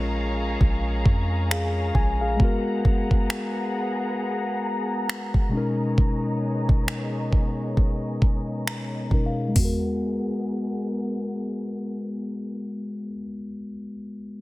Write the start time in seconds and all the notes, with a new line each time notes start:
Already playing: A#1 G#3 C#4 F4 G#4 A#4 C#5 D#5 F5 A#5, downlifter
0.61 A#1, kick
1.06 F2, kick
1.51 G#4 F5, finger snap
1.95 A#1 G#5, kick
2.21 G#4 F5
2.37 G#3 B3 G#4 F#5, kick
2.42 F#4 A#4
2.85 kick
3.11 kick
3.30 finger snap
5.10 finger snap
5.34 kick
5.49 B2 G#3
5.53 B3 C#4 D#4 G#4 C#5 D#5
5.57 A#4
5.98 kick
6.69 kick
6.88 finger snap
7.33 kick
7.77 kick
8.22 kick
8.67 A#5, finger snap
9.10 B2 G#3 C#4 D#4 A#4, kick
9.26 F5
9.48 G#3
9.54 G#3 B3 G#4 A#4 F#5, kick, floor tom, open hi-hat
9.59 F#4
9.65 A#4